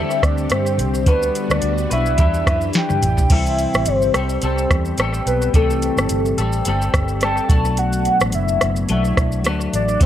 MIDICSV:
0, 0, Header, 1, 6, 480
1, 0, Start_track
1, 0, Tempo, 559180
1, 917, Time_signature, 4, 2, 24, 8
1, 8635, End_track
2, 0, Start_track
2, 0, Title_t, "Soft synth lead"
2, 0, Program_c, 0, 80
2, 0, Note_on_c, 0, 76, 110
2, 202, Note_on_c, 0, 74, 97
2, 215, Note_off_c, 0, 76, 0
2, 443, Note_on_c, 0, 72, 96
2, 455, Note_off_c, 0, 74, 0
2, 918, Note_off_c, 0, 72, 0
2, 923, Note_on_c, 0, 71, 100
2, 1291, Note_on_c, 0, 74, 96
2, 1304, Note_off_c, 0, 71, 0
2, 1638, Note_off_c, 0, 74, 0
2, 1654, Note_on_c, 0, 76, 104
2, 2331, Note_off_c, 0, 76, 0
2, 2379, Note_on_c, 0, 79, 105
2, 2852, Note_on_c, 0, 76, 107
2, 2865, Note_off_c, 0, 79, 0
2, 3323, Note_on_c, 0, 72, 94
2, 3336, Note_off_c, 0, 76, 0
2, 3797, Note_off_c, 0, 72, 0
2, 3803, Note_on_c, 0, 72, 81
2, 4246, Note_off_c, 0, 72, 0
2, 4519, Note_on_c, 0, 71, 107
2, 4741, Note_off_c, 0, 71, 0
2, 4767, Note_on_c, 0, 69, 115
2, 5687, Note_off_c, 0, 69, 0
2, 6211, Note_on_c, 0, 81, 117
2, 6683, Note_on_c, 0, 78, 103
2, 6696, Note_off_c, 0, 81, 0
2, 7159, Note_off_c, 0, 78, 0
2, 7166, Note_on_c, 0, 76, 91
2, 7607, Note_off_c, 0, 76, 0
2, 7649, Note_on_c, 0, 76, 85
2, 8088, Note_off_c, 0, 76, 0
2, 8365, Note_on_c, 0, 74, 105
2, 8583, Note_off_c, 0, 74, 0
2, 8605, Note_on_c, 0, 72, 116
2, 8635, Note_off_c, 0, 72, 0
2, 8635, End_track
3, 0, Start_track
3, 0, Title_t, "Clean electric guitar"
3, 0, Program_c, 1, 27
3, 0, Note_on_c, 1, 50, 67
3, 0, Note_on_c, 1, 55, 77
3, 0, Note_on_c, 1, 60, 74
3, 0, Note_on_c, 1, 67, 85
3, 0, Note_on_c, 1, 69, 84
3, 909, Note_off_c, 1, 50, 0
3, 912, Note_off_c, 1, 55, 0
3, 913, Note_on_c, 1, 50, 67
3, 915, Note_on_c, 1, 55, 67
3, 918, Note_off_c, 1, 60, 0
3, 921, Note_on_c, 1, 62, 74
3, 922, Note_off_c, 1, 67, 0
3, 925, Note_on_c, 1, 66, 78
3, 927, Note_off_c, 1, 69, 0
3, 930, Note_on_c, 1, 71, 75
3, 1624, Note_off_c, 1, 71, 0
3, 1634, Note_off_c, 1, 66, 0
3, 1634, Note_on_c, 1, 71, 47
3, 1635, Note_off_c, 1, 50, 0
3, 1639, Note_off_c, 1, 62, 0
3, 1644, Note_on_c, 1, 66, 46
3, 1655, Note_on_c, 1, 62, 45
3, 1670, Note_off_c, 1, 55, 0
3, 1867, Note_off_c, 1, 62, 0
3, 1869, Note_on_c, 1, 52, 66
3, 1873, Note_on_c, 1, 55, 76
3, 1875, Note_off_c, 1, 71, 0
3, 1877, Note_on_c, 1, 62, 83
3, 1879, Note_off_c, 1, 66, 0
3, 1883, Note_on_c, 1, 64, 78
3, 1886, Note_on_c, 1, 71, 82
3, 2104, Note_off_c, 1, 71, 0
3, 2113, Note_off_c, 1, 52, 0
3, 2114, Note_off_c, 1, 64, 0
3, 2115, Note_off_c, 1, 55, 0
3, 2115, Note_on_c, 1, 71, 49
3, 2117, Note_off_c, 1, 62, 0
3, 2125, Note_on_c, 1, 64, 41
3, 2134, Note_on_c, 1, 62, 42
3, 2836, Note_off_c, 1, 71, 0
3, 2837, Note_on_c, 1, 48, 72
3, 2841, Note_on_c, 1, 52, 80
3, 2843, Note_off_c, 1, 62, 0
3, 2846, Note_on_c, 1, 55, 74
3, 2846, Note_on_c, 1, 60, 74
3, 2849, Note_off_c, 1, 64, 0
3, 2852, Note_on_c, 1, 67, 84
3, 2853, Note_on_c, 1, 69, 79
3, 3550, Note_off_c, 1, 69, 0
3, 3553, Note_off_c, 1, 67, 0
3, 3554, Note_on_c, 1, 69, 53
3, 3557, Note_off_c, 1, 48, 0
3, 3559, Note_off_c, 1, 52, 0
3, 3559, Note_off_c, 1, 60, 0
3, 3561, Note_off_c, 1, 55, 0
3, 3563, Note_on_c, 1, 67, 51
3, 3569, Note_on_c, 1, 60, 41
3, 3575, Note_on_c, 1, 55, 42
3, 3787, Note_off_c, 1, 55, 0
3, 3795, Note_off_c, 1, 60, 0
3, 3795, Note_off_c, 1, 69, 0
3, 3798, Note_on_c, 1, 55, 62
3, 3800, Note_off_c, 1, 67, 0
3, 3805, Note_on_c, 1, 60, 65
3, 3812, Note_on_c, 1, 67, 63
3, 3819, Note_on_c, 1, 69, 68
3, 4264, Note_off_c, 1, 55, 0
3, 4274, Note_off_c, 1, 60, 0
3, 4275, Note_on_c, 1, 55, 57
3, 4279, Note_off_c, 1, 67, 0
3, 4285, Note_on_c, 1, 60, 58
3, 4289, Note_on_c, 1, 67, 61
3, 4293, Note_off_c, 1, 69, 0
3, 4297, Note_on_c, 1, 69, 69
3, 4749, Note_off_c, 1, 55, 0
3, 4754, Note_off_c, 1, 60, 0
3, 4754, Note_on_c, 1, 48, 67
3, 4756, Note_off_c, 1, 67, 0
3, 4756, Note_on_c, 1, 52, 68
3, 4759, Note_on_c, 1, 55, 70
3, 4764, Note_on_c, 1, 60, 74
3, 4766, Note_off_c, 1, 69, 0
3, 4767, Note_on_c, 1, 67, 87
3, 4770, Note_on_c, 1, 69, 75
3, 5472, Note_off_c, 1, 67, 0
3, 5472, Note_off_c, 1, 69, 0
3, 5474, Note_off_c, 1, 48, 0
3, 5475, Note_off_c, 1, 52, 0
3, 5475, Note_on_c, 1, 69, 62
3, 5477, Note_off_c, 1, 55, 0
3, 5477, Note_off_c, 1, 60, 0
3, 5482, Note_on_c, 1, 67, 54
3, 5487, Note_on_c, 1, 60, 49
3, 5498, Note_on_c, 1, 55, 50
3, 5707, Note_off_c, 1, 55, 0
3, 5715, Note_off_c, 1, 60, 0
3, 5715, Note_off_c, 1, 69, 0
3, 5718, Note_on_c, 1, 55, 66
3, 5719, Note_off_c, 1, 67, 0
3, 5725, Note_on_c, 1, 60, 68
3, 5736, Note_on_c, 1, 67, 76
3, 5740, Note_on_c, 1, 69, 75
3, 6183, Note_off_c, 1, 55, 0
3, 6193, Note_on_c, 1, 55, 61
3, 6194, Note_off_c, 1, 60, 0
3, 6200, Note_off_c, 1, 67, 0
3, 6205, Note_on_c, 1, 60, 61
3, 6210, Note_on_c, 1, 67, 66
3, 6212, Note_off_c, 1, 69, 0
3, 6216, Note_on_c, 1, 69, 68
3, 6423, Note_off_c, 1, 67, 0
3, 6427, Note_on_c, 1, 66, 60
3, 6434, Note_off_c, 1, 55, 0
3, 6434, Note_off_c, 1, 60, 0
3, 6437, Note_on_c, 1, 62, 62
3, 6444, Note_on_c, 1, 57, 56
3, 6445, Note_off_c, 1, 69, 0
3, 6452, Note_on_c, 1, 54, 53
3, 6459, Note_on_c, 1, 47, 50
3, 7629, Note_off_c, 1, 54, 0
3, 7633, Note_on_c, 1, 54, 65
3, 7635, Note_off_c, 1, 57, 0
3, 7639, Note_on_c, 1, 57, 59
3, 7643, Note_off_c, 1, 62, 0
3, 7646, Note_off_c, 1, 47, 0
3, 7647, Note_on_c, 1, 62, 59
3, 7651, Note_off_c, 1, 66, 0
3, 7654, Note_on_c, 1, 66, 66
3, 8106, Note_off_c, 1, 54, 0
3, 8109, Note_on_c, 1, 54, 61
3, 8113, Note_off_c, 1, 57, 0
3, 8117, Note_on_c, 1, 57, 62
3, 8122, Note_off_c, 1, 62, 0
3, 8125, Note_on_c, 1, 62, 69
3, 8129, Note_off_c, 1, 66, 0
3, 8133, Note_on_c, 1, 66, 67
3, 8579, Note_off_c, 1, 54, 0
3, 8582, Note_on_c, 1, 50, 73
3, 8594, Note_off_c, 1, 57, 0
3, 8598, Note_on_c, 1, 57, 75
3, 8604, Note_off_c, 1, 62, 0
3, 8608, Note_on_c, 1, 60, 85
3, 8615, Note_off_c, 1, 66, 0
3, 8635, Note_off_c, 1, 50, 0
3, 8635, Note_off_c, 1, 57, 0
3, 8635, Note_off_c, 1, 60, 0
3, 8635, End_track
4, 0, Start_track
4, 0, Title_t, "String machine"
4, 0, Program_c, 2, 50
4, 0, Note_on_c, 2, 50, 89
4, 0, Note_on_c, 2, 60, 76
4, 0, Note_on_c, 2, 67, 97
4, 899, Note_off_c, 2, 60, 0
4, 900, Note_off_c, 2, 50, 0
4, 900, Note_off_c, 2, 67, 0
4, 920, Note_on_c, 2, 55, 77
4, 920, Note_on_c, 2, 66, 90
4, 921, Note_on_c, 2, 59, 76
4, 1869, Note_off_c, 2, 55, 0
4, 1869, Note_off_c, 2, 59, 0
4, 1869, Note_off_c, 2, 66, 0
4, 1879, Note_on_c, 2, 52, 75
4, 1880, Note_on_c, 2, 62, 69
4, 1881, Note_on_c, 2, 67, 83
4, 2828, Note_off_c, 2, 52, 0
4, 2829, Note_off_c, 2, 62, 0
4, 2829, Note_off_c, 2, 67, 0
4, 8635, End_track
5, 0, Start_track
5, 0, Title_t, "Fingered electric bass"
5, 0, Program_c, 3, 33
5, 197, Note_on_c, 3, 38, 91
5, 389, Note_off_c, 3, 38, 0
5, 433, Note_on_c, 3, 43, 89
5, 669, Note_on_c, 3, 36, 84
5, 682, Note_off_c, 3, 43, 0
5, 912, Note_off_c, 3, 36, 0
5, 912, Note_on_c, 3, 38, 91
5, 1106, Note_off_c, 3, 38, 0
5, 1286, Note_on_c, 3, 38, 86
5, 1374, Note_off_c, 3, 38, 0
5, 1398, Note_on_c, 3, 38, 88
5, 1590, Note_off_c, 3, 38, 0
5, 1643, Note_on_c, 3, 35, 84
5, 1878, Note_off_c, 3, 35, 0
5, 1878, Note_on_c, 3, 40, 91
5, 2069, Note_off_c, 3, 40, 0
5, 2119, Note_on_c, 3, 42, 74
5, 2310, Note_off_c, 3, 42, 0
5, 2492, Note_on_c, 3, 43, 84
5, 2577, Note_off_c, 3, 43, 0
5, 2603, Note_on_c, 3, 33, 89
5, 2706, Note_off_c, 3, 33, 0
5, 2730, Note_on_c, 3, 35, 81
5, 2816, Note_off_c, 3, 35, 0
5, 2834, Note_on_c, 3, 36, 97
5, 3133, Note_off_c, 3, 36, 0
5, 3213, Note_on_c, 3, 33, 79
5, 3298, Note_off_c, 3, 33, 0
5, 3316, Note_on_c, 3, 31, 89
5, 3508, Note_off_c, 3, 31, 0
5, 3557, Note_on_c, 3, 36, 93
5, 3749, Note_off_c, 3, 36, 0
5, 3801, Note_on_c, 3, 36, 93
5, 3991, Note_off_c, 3, 36, 0
5, 4040, Note_on_c, 3, 40, 84
5, 4230, Note_off_c, 3, 40, 0
5, 4277, Note_on_c, 3, 33, 91
5, 4469, Note_off_c, 3, 33, 0
5, 4518, Note_on_c, 3, 35, 87
5, 4709, Note_off_c, 3, 35, 0
5, 4754, Note_on_c, 3, 36, 97
5, 5052, Note_off_c, 3, 36, 0
5, 5126, Note_on_c, 3, 31, 80
5, 5213, Note_off_c, 3, 31, 0
5, 5240, Note_on_c, 3, 31, 82
5, 5430, Note_off_c, 3, 31, 0
5, 5477, Note_on_c, 3, 33, 88
5, 5668, Note_off_c, 3, 33, 0
5, 5719, Note_on_c, 3, 31, 91
5, 5910, Note_off_c, 3, 31, 0
5, 5956, Note_on_c, 3, 31, 81
5, 6339, Note_off_c, 3, 31, 0
5, 6434, Note_on_c, 3, 35, 93
5, 6924, Note_off_c, 3, 35, 0
5, 7047, Note_on_c, 3, 33, 76
5, 7133, Note_off_c, 3, 33, 0
5, 7158, Note_on_c, 3, 30, 92
5, 7349, Note_off_c, 3, 30, 0
5, 7400, Note_on_c, 3, 30, 93
5, 7590, Note_off_c, 3, 30, 0
5, 7638, Note_on_c, 3, 35, 96
5, 7828, Note_off_c, 3, 35, 0
5, 7875, Note_on_c, 3, 35, 78
5, 8113, Note_off_c, 3, 35, 0
5, 8113, Note_on_c, 3, 38, 84
5, 8305, Note_off_c, 3, 38, 0
5, 8356, Note_on_c, 3, 33, 79
5, 8547, Note_off_c, 3, 33, 0
5, 8591, Note_on_c, 3, 38, 101
5, 8635, Note_off_c, 3, 38, 0
5, 8635, End_track
6, 0, Start_track
6, 0, Title_t, "Drums"
6, 90, Note_on_c, 9, 82, 49
6, 176, Note_off_c, 9, 82, 0
6, 196, Note_on_c, 9, 36, 78
6, 198, Note_on_c, 9, 37, 92
6, 202, Note_on_c, 9, 42, 45
6, 202, Note_on_c, 9, 82, 45
6, 282, Note_off_c, 9, 36, 0
6, 284, Note_off_c, 9, 37, 0
6, 288, Note_off_c, 9, 42, 0
6, 288, Note_off_c, 9, 82, 0
6, 325, Note_on_c, 9, 82, 48
6, 411, Note_off_c, 9, 82, 0
6, 426, Note_on_c, 9, 42, 61
6, 426, Note_on_c, 9, 82, 60
6, 443, Note_on_c, 9, 37, 85
6, 512, Note_off_c, 9, 42, 0
6, 512, Note_off_c, 9, 82, 0
6, 529, Note_off_c, 9, 37, 0
6, 570, Note_on_c, 9, 82, 47
6, 656, Note_off_c, 9, 82, 0
6, 678, Note_on_c, 9, 42, 65
6, 678, Note_on_c, 9, 82, 64
6, 764, Note_off_c, 9, 42, 0
6, 764, Note_off_c, 9, 82, 0
6, 810, Note_on_c, 9, 82, 54
6, 896, Note_off_c, 9, 82, 0
6, 913, Note_on_c, 9, 36, 94
6, 914, Note_on_c, 9, 42, 57
6, 914, Note_on_c, 9, 82, 61
6, 999, Note_off_c, 9, 36, 0
6, 1000, Note_off_c, 9, 42, 0
6, 1000, Note_off_c, 9, 82, 0
6, 1053, Note_on_c, 9, 82, 57
6, 1138, Note_off_c, 9, 82, 0
6, 1161, Note_on_c, 9, 42, 51
6, 1161, Note_on_c, 9, 82, 54
6, 1247, Note_off_c, 9, 42, 0
6, 1247, Note_off_c, 9, 82, 0
6, 1291, Note_on_c, 9, 82, 53
6, 1299, Note_on_c, 9, 37, 87
6, 1377, Note_off_c, 9, 82, 0
6, 1385, Note_off_c, 9, 37, 0
6, 1388, Note_on_c, 9, 42, 72
6, 1388, Note_on_c, 9, 82, 72
6, 1474, Note_off_c, 9, 42, 0
6, 1474, Note_off_c, 9, 82, 0
6, 1528, Note_on_c, 9, 82, 54
6, 1614, Note_off_c, 9, 82, 0
6, 1641, Note_on_c, 9, 42, 53
6, 1641, Note_on_c, 9, 82, 60
6, 1727, Note_off_c, 9, 42, 0
6, 1727, Note_off_c, 9, 82, 0
6, 1767, Note_on_c, 9, 82, 43
6, 1853, Note_off_c, 9, 82, 0
6, 1871, Note_on_c, 9, 42, 63
6, 1871, Note_on_c, 9, 82, 63
6, 1876, Note_on_c, 9, 36, 89
6, 1956, Note_off_c, 9, 42, 0
6, 1956, Note_off_c, 9, 82, 0
6, 1962, Note_off_c, 9, 36, 0
6, 2009, Note_on_c, 9, 82, 49
6, 2095, Note_off_c, 9, 82, 0
6, 2118, Note_on_c, 9, 36, 85
6, 2120, Note_on_c, 9, 37, 96
6, 2124, Note_on_c, 9, 42, 49
6, 2124, Note_on_c, 9, 82, 45
6, 2204, Note_off_c, 9, 36, 0
6, 2206, Note_off_c, 9, 37, 0
6, 2210, Note_off_c, 9, 42, 0
6, 2210, Note_off_c, 9, 82, 0
6, 2243, Note_on_c, 9, 82, 50
6, 2329, Note_off_c, 9, 82, 0
6, 2347, Note_on_c, 9, 42, 61
6, 2347, Note_on_c, 9, 82, 60
6, 2362, Note_on_c, 9, 38, 53
6, 2433, Note_off_c, 9, 42, 0
6, 2433, Note_off_c, 9, 82, 0
6, 2448, Note_off_c, 9, 38, 0
6, 2487, Note_on_c, 9, 48, 58
6, 2488, Note_on_c, 9, 82, 44
6, 2573, Note_off_c, 9, 48, 0
6, 2573, Note_off_c, 9, 82, 0
6, 2595, Note_on_c, 9, 45, 86
6, 2597, Note_on_c, 9, 42, 61
6, 2597, Note_on_c, 9, 82, 68
6, 2681, Note_off_c, 9, 45, 0
6, 2683, Note_off_c, 9, 42, 0
6, 2683, Note_off_c, 9, 82, 0
6, 2726, Note_on_c, 9, 43, 85
6, 2729, Note_on_c, 9, 82, 58
6, 2812, Note_off_c, 9, 43, 0
6, 2815, Note_off_c, 9, 82, 0
6, 2831, Note_on_c, 9, 49, 84
6, 2832, Note_on_c, 9, 42, 64
6, 2832, Note_on_c, 9, 82, 59
6, 2835, Note_on_c, 9, 36, 97
6, 2917, Note_off_c, 9, 49, 0
6, 2918, Note_off_c, 9, 42, 0
6, 2918, Note_off_c, 9, 82, 0
6, 2921, Note_off_c, 9, 36, 0
6, 2973, Note_on_c, 9, 82, 53
6, 3058, Note_off_c, 9, 82, 0
6, 3078, Note_on_c, 9, 42, 52
6, 3078, Note_on_c, 9, 82, 52
6, 3164, Note_off_c, 9, 42, 0
6, 3164, Note_off_c, 9, 82, 0
6, 3211, Note_on_c, 9, 82, 53
6, 3219, Note_on_c, 9, 37, 88
6, 3297, Note_off_c, 9, 82, 0
6, 3305, Note_off_c, 9, 37, 0
6, 3310, Note_on_c, 9, 42, 81
6, 3310, Note_on_c, 9, 82, 78
6, 3396, Note_off_c, 9, 42, 0
6, 3396, Note_off_c, 9, 82, 0
6, 3450, Note_on_c, 9, 82, 55
6, 3536, Note_off_c, 9, 82, 0
6, 3556, Note_on_c, 9, 37, 89
6, 3557, Note_on_c, 9, 42, 58
6, 3557, Note_on_c, 9, 82, 60
6, 3642, Note_off_c, 9, 37, 0
6, 3643, Note_off_c, 9, 42, 0
6, 3643, Note_off_c, 9, 82, 0
6, 3685, Note_on_c, 9, 82, 43
6, 3771, Note_off_c, 9, 82, 0
6, 3791, Note_on_c, 9, 42, 64
6, 3791, Note_on_c, 9, 82, 63
6, 3877, Note_off_c, 9, 42, 0
6, 3877, Note_off_c, 9, 82, 0
6, 3933, Note_on_c, 9, 82, 48
6, 4019, Note_off_c, 9, 82, 0
6, 4039, Note_on_c, 9, 36, 89
6, 4040, Note_on_c, 9, 37, 98
6, 4043, Note_on_c, 9, 42, 47
6, 4043, Note_on_c, 9, 82, 47
6, 4124, Note_off_c, 9, 36, 0
6, 4125, Note_off_c, 9, 37, 0
6, 4129, Note_off_c, 9, 42, 0
6, 4129, Note_off_c, 9, 82, 0
6, 4166, Note_on_c, 9, 82, 47
6, 4252, Note_off_c, 9, 82, 0
6, 4272, Note_on_c, 9, 42, 58
6, 4272, Note_on_c, 9, 82, 62
6, 4289, Note_on_c, 9, 37, 92
6, 4358, Note_off_c, 9, 42, 0
6, 4358, Note_off_c, 9, 82, 0
6, 4375, Note_off_c, 9, 37, 0
6, 4411, Note_on_c, 9, 82, 49
6, 4496, Note_off_c, 9, 82, 0
6, 4523, Note_on_c, 9, 42, 61
6, 4523, Note_on_c, 9, 82, 61
6, 4608, Note_off_c, 9, 42, 0
6, 4608, Note_off_c, 9, 82, 0
6, 4652, Note_on_c, 9, 82, 55
6, 4738, Note_off_c, 9, 82, 0
6, 4755, Note_on_c, 9, 36, 95
6, 4756, Note_on_c, 9, 42, 61
6, 4756, Note_on_c, 9, 82, 65
6, 4841, Note_off_c, 9, 36, 0
6, 4842, Note_off_c, 9, 42, 0
6, 4842, Note_off_c, 9, 82, 0
6, 4896, Note_on_c, 9, 82, 58
6, 4982, Note_off_c, 9, 82, 0
6, 4999, Note_on_c, 9, 42, 53
6, 4999, Note_on_c, 9, 82, 53
6, 5084, Note_off_c, 9, 42, 0
6, 5084, Note_off_c, 9, 82, 0
6, 5130, Note_on_c, 9, 82, 57
6, 5138, Note_on_c, 9, 37, 91
6, 5216, Note_off_c, 9, 82, 0
6, 5224, Note_off_c, 9, 37, 0
6, 5230, Note_on_c, 9, 42, 79
6, 5230, Note_on_c, 9, 82, 76
6, 5316, Note_off_c, 9, 42, 0
6, 5316, Note_off_c, 9, 82, 0
6, 5370, Note_on_c, 9, 82, 54
6, 5456, Note_off_c, 9, 82, 0
6, 5477, Note_on_c, 9, 42, 58
6, 5477, Note_on_c, 9, 82, 56
6, 5563, Note_off_c, 9, 42, 0
6, 5563, Note_off_c, 9, 82, 0
6, 5600, Note_on_c, 9, 82, 45
6, 5686, Note_off_c, 9, 82, 0
6, 5709, Note_on_c, 9, 42, 61
6, 5709, Note_on_c, 9, 82, 65
6, 5795, Note_off_c, 9, 42, 0
6, 5795, Note_off_c, 9, 82, 0
6, 5852, Note_on_c, 9, 82, 52
6, 5937, Note_off_c, 9, 82, 0
6, 5955, Note_on_c, 9, 36, 86
6, 5955, Note_on_c, 9, 37, 97
6, 5958, Note_on_c, 9, 42, 51
6, 5958, Note_on_c, 9, 82, 46
6, 6041, Note_off_c, 9, 36, 0
6, 6041, Note_off_c, 9, 37, 0
6, 6044, Note_off_c, 9, 42, 0
6, 6044, Note_off_c, 9, 82, 0
6, 6079, Note_on_c, 9, 82, 52
6, 6165, Note_off_c, 9, 82, 0
6, 6187, Note_on_c, 9, 42, 60
6, 6187, Note_on_c, 9, 82, 60
6, 6205, Note_on_c, 9, 37, 84
6, 6273, Note_off_c, 9, 42, 0
6, 6273, Note_off_c, 9, 82, 0
6, 6290, Note_off_c, 9, 37, 0
6, 6328, Note_on_c, 9, 82, 48
6, 6413, Note_off_c, 9, 82, 0
6, 6433, Note_on_c, 9, 36, 109
6, 6435, Note_on_c, 9, 42, 61
6, 6435, Note_on_c, 9, 82, 69
6, 6518, Note_off_c, 9, 36, 0
6, 6521, Note_off_c, 9, 42, 0
6, 6521, Note_off_c, 9, 82, 0
6, 6566, Note_on_c, 9, 82, 57
6, 6652, Note_off_c, 9, 82, 0
6, 6672, Note_on_c, 9, 42, 65
6, 6672, Note_on_c, 9, 82, 65
6, 6758, Note_off_c, 9, 42, 0
6, 6758, Note_off_c, 9, 82, 0
6, 6805, Note_on_c, 9, 82, 57
6, 6891, Note_off_c, 9, 82, 0
6, 6912, Note_on_c, 9, 42, 49
6, 6912, Note_on_c, 9, 82, 52
6, 6998, Note_off_c, 9, 42, 0
6, 6998, Note_off_c, 9, 82, 0
6, 7044, Note_on_c, 9, 82, 58
6, 7051, Note_on_c, 9, 37, 92
6, 7129, Note_off_c, 9, 82, 0
6, 7137, Note_off_c, 9, 37, 0
6, 7145, Note_on_c, 9, 42, 79
6, 7145, Note_on_c, 9, 82, 83
6, 7231, Note_off_c, 9, 42, 0
6, 7231, Note_off_c, 9, 82, 0
6, 7282, Note_on_c, 9, 82, 56
6, 7368, Note_off_c, 9, 82, 0
6, 7392, Note_on_c, 9, 37, 90
6, 7393, Note_on_c, 9, 42, 59
6, 7393, Note_on_c, 9, 82, 57
6, 7478, Note_off_c, 9, 37, 0
6, 7479, Note_off_c, 9, 42, 0
6, 7479, Note_off_c, 9, 82, 0
6, 7521, Note_on_c, 9, 82, 45
6, 7607, Note_off_c, 9, 82, 0
6, 7628, Note_on_c, 9, 42, 61
6, 7628, Note_on_c, 9, 82, 62
6, 7713, Note_off_c, 9, 42, 0
6, 7713, Note_off_c, 9, 82, 0
6, 7766, Note_on_c, 9, 82, 49
6, 7852, Note_off_c, 9, 82, 0
6, 7874, Note_on_c, 9, 36, 80
6, 7874, Note_on_c, 9, 37, 95
6, 7878, Note_on_c, 9, 42, 45
6, 7878, Note_on_c, 9, 82, 50
6, 7959, Note_off_c, 9, 36, 0
6, 7960, Note_off_c, 9, 37, 0
6, 7964, Note_off_c, 9, 42, 0
6, 7964, Note_off_c, 9, 82, 0
6, 8000, Note_on_c, 9, 82, 49
6, 8086, Note_off_c, 9, 82, 0
6, 8107, Note_on_c, 9, 42, 58
6, 8107, Note_on_c, 9, 82, 63
6, 8125, Note_on_c, 9, 37, 86
6, 8193, Note_off_c, 9, 42, 0
6, 8193, Note_off_c, 9, 82, 0
6, 8210, Note_off_c, 9, 37, 0
6, 8248, Note_on_c, 9, 82, 51
6, 8334, Note_off_c, 9, 82, 0
6, 8356, Note_on_c, 9, 42, 68
6, 8356, Note_on_c, 9, 82, 66
6, 8442, Note_off_c, 9, 42, 0
6, 8442, Note_off_c, 9, 82, 0
6, 8485, Note_on_c, 9, 82, 54
6, 8571, Note_off_c, 9, 82, 0
6, 8590, Note_on_c, 9, 36, 94
6, 8590, Note_on_c, 9, 42, 68
6, 8590, Note_on_c, 9, 82, 62
6, 8635, Note_off_c, 9, 36, 0
6, 8635, Note_off_c, 9, 42, 0
6, 8635, Note_off_c, 9, 82, 0
6, 8635, End_track
0, 0, End_of_file